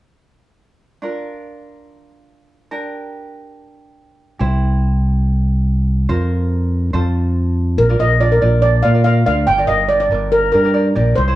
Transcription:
1.02 ukulele D4 F4 A#4
2.71 ukulele D4 G4 A#4
4.39 fingered electric bass C2, ukulele E4 G4 C5
6.09 fingered electric bass F2, ukulele F4 A#4 C5
6.93 fingered electric bass F2, ukulele F4 A4 C5
7.78 fingered electric bass A#1, steel pan A#4
7.89 ukulele F4 A#4 D5
7.99 fingered electric bass A#1, ukulele F4 A#4 F5, steel pan D#5
8.20 ukulele F4 A#4 D5, steel pan D5
8.32 steel pan A#4
8.41 fingered electric bass A#1, ukulele F4 A#4 D5
8.62 steel pan D5
8.83 fingered electric bass A#2, ukulele F4 A#4 D5, steel pan F5
8.94 ukulele F4 A#4 D5
9.04 ukulele F4 A#4 D5, steel pan F5
9.26 fingered electric bass D2, ukulele F4 A#4 D5, steel pan F5
9.47 fingered electric bass G1, steel pan G5
9.58 ukulele G4 A#4 D5
9.67 fingered electric bass G1, ukulele G4 A#4 F5, steel pan D#5
9.89 ukulele G4 A#4 D5, steel pan D5
10.00 steel pan D5
10.11 fingered electric bass G1, ukulele G4 A#4 D5
10.32 steel pan A#4
10.52 fingered electric bass G2, ukulele G4 A#4 D5, steel pan A#4
10.64 ukulele G4 A#4 D5
10.74 ukulele G4 A#4 D5
10.95 fingered electric bass A#1, ukulele G4 A#4 D5
11.16 fingered electric bass C2, steel pan C5
11.28 ukulele E4 G4 C5

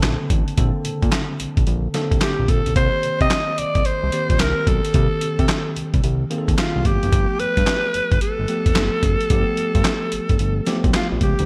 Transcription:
Already playing: tine electric piano C#3 D3 A#3 C4 A4
0.03 analog synth bass A#1, snare, clap, closed hi-hat
0.30 analog synth bass A1, kick, closed hi-hat
0.48 closed hi-hat
0.58 analog synth bass A#1, tine electric piano D3 A#3 C4 A4, kick, closed hi-hat
0.85 analog synth bass A#2, closed hi-hat
1.02 analog synth bass A#2, kick, closed hi-hat
1.12 snare, clap, closed hi-hat
1.40 analog synth bass A#1, closed hi-hat
1.57 analog synth bass A#1, kick, closed hi-hat
1.67 analog synth bass A#1, closed hi-hat
1.94 tine electric piano D3 A#3 C4 A4, snare, closed hi-hat
2.11 analog synth bass C2, kick, closed hi-hat
2.21 alto saxophone G4, snare, clap, closed hi-hat
2.39 analog synth bass A#1
2.48 analog synth bass A#1, alto saxophone A4, kick, closed hi-hat
2.66 analog synth bass B1, closed hi-hat
2.76 analog synth bass C2, tine electric piano D#3 A#3 C4 G4, alto saxophone C5, kick, closed hi-hat
3.03 analog synth bass C3, closed hi-hat
3.21 analog synth bass C3, alto saxophone D#5, kick, closed hi-hat
3.30 snare, clap, closed hi-hat
3.58 analog synth bass C2, alto saxophone D5, closed hi-hat
3.75 analog synth bass C2, kick, closed hi-hat
3.85 analog synth bass C2, alto saxophone C5, closed hi-hat
4.03 analog synth bass C2
4.12 tine electric piano D#3 A#3 C4 G4, closed hi-hat
4.30 analog synth bass A#1, kick, closed hi-hat
4.40 analog synth bass C2, alto saxophone A#4, snare, clap, closed hi-hat
4.67 analog synth bass B1, alto saxophone A4, kick, closed hi-hat
4.85 closed hi-hat
4.94 analog synth bass C2, tine electric piano D#3 A#3 C4 G4, kick, closed hi-hat
5.21 analog synth bass C3, closed hi-hat
5.39 analog synth bass C3, kick, closed hi-hat
5.49 snare, clap, closed hi-hat
5.76 analog synth bass C2, closed hi-hat
5.94 analog synth bass C2, kick, closed hi-hat
6.04 analog synth bass C2, closed hi-hat
6.30 tine electric piano D#3 A#3 C4 G#4, closed hi-hat
6.38 tine electric piano A4
6.48 analog synth bass D#2, kick, closed hi-hat
6.58 alto saxophone F4, snare, clap, closed hi-hat
6.76 analog synth bass C2
6.85 analog synth bass G1, tine electric piano F3 A3 B3 G4, alto saxophone G4, kick, closed hi-hat
7.03 analog synth bass F#1, closed hi-hat
7.13 analog synth bass G1, kick, closed hi-hat
7.40 analog synth bass G2, alto saxophone B4, closed hi-hat
7.57 analog synth bass G2, kick, closed hi-hat
7.67 snare, clap, closed hi-hat
7.94 analog synth bass G1, closed hi-hat
8.12 analog synth bass G1, kick, closed hi-hat
8.21 analog synth bass G1, alto saxophone A4, closed hi-hat
8.39 analog synth bass G1
8.48 tine electric piano F3 A3 B3 G4, closed hi-hat
8.66 analog synth bass F1, kick, closed hi-hat
8.76 analog synth bass G1, snare, clap, closed hi-hat
9.03 analog synth bass F#1, kick, closed hi-hat
9.21 closed hi-hat
9.30 analog synth bass G1, tine electric piano F3 A3 B3 G4, kick, closed hi-hat
9.57 analog synth bass G2, closed hi-hat
9.75 analog synth bass G2, kick, closed hi-hat
9.85 snare, clap, closed hi-hat
10.12 analog synth bass G1, closed hi-hat
10.29 analog synth bass G1, kick, closed hi-hat
10.39 analog synth bass G1, closed hi-hat
10.66 tine electric piano F3 A3 B3 G4, snare, closed hi-hat
10.84 analog synth bass B1, kick, closed hi-hat
10.94 alto saxophone F4, snare, clap, closed hi-hat
11.12 analog synth bass A#1
11.21 analog synth bass C#2, alto saxophone G4, kick, closed hi-hat
11.39 analog synth bass D2, closed hi-hat

